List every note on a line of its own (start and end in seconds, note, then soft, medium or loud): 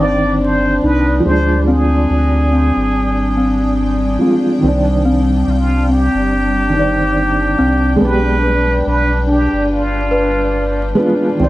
0.00 0.80 G1 medium
0.00 1.19 D#3 medium
0.00 11.49 G3 medium
0.00 1.21 C4 medium
0.00 1.27 C4 loud
0.00 4.61 D4 medium
0.00 0.83 D#4 medium
0.00 0.42 D5 loud
0.00 1.23 D5 medium
0.00 11.49 G5 medium
0.41 0.86 C5 loud
0.83 1.21 C2 medium
0.83 1.25 D#4 medium
0.83 1.24 B4 medium
1.20 4.14 F3 loud
1.25 2.07 D2 loud
1.25 4.16 G#3 medium
1.25 1.69 C5 loud
1.29 4.19 D4 loud
1.68 2.48 C4 loud
1.68 4.21 G#4 medium
2.10 2.72 D2 loud
2.52 2.93 C4 medium
2.77 4.18 G#1 medium
3.37 3.77 C4 medium
4.19 4.58 F3 medium
4.19 4.59 G#3 medium
4.19 4.60 C4 medium
4.24 4.60 F4 medium
4.58 6.68 D#3 medium
4.58 11.49 D4 medium
4.63 5.44 C2 loud
4.63 6.70 C4 medium
4.68 6.72 D4 medium
5.05 5.86 C4 loud
5.43 5.51 G4 medium
5.47 6.09 C2 loud
5.47 5.94 F4 medium
5.89 6.30 C4 medium
5.89 8.05 G4 loud
6.15 7.56 G1 medium
6.70 7.94 D#3 medium
6.74 7.97 C4 medium
6.74 7.55 D#4 medium
6.79 7.99 D5 medium
7.58 7.97 C2 medium
7.58 8.01 C4 loud
7.96 10.90 G#3 loud
8.01 8.82 B1 medium
8.01 10.92 B3 medium
8.01 8.87 B4 loud
8.05 10.95 G4 loud
8.43 8.83 B4 medium
8.87 9.48 B1 loud
8.87 9.31 B4 loud
9.27 10.08 D4 medium
9.27 9.73 G4 loud
9.53 10.94 G1 medium
9.72 10.98 F4 medium
10.11 10.93 B4 loud
10.95 11.34 G#3 loud
10.95 11.35 B3 medium
10.95 11.37 B4 medium
10.99 11.36 F4 loud
11.35 11.49 D#3 medium
11.39 11.49 C2 loud
11.39 11.49 C4 medium
11.39 11.49 C5 loud
11.44 11.49 D5 medium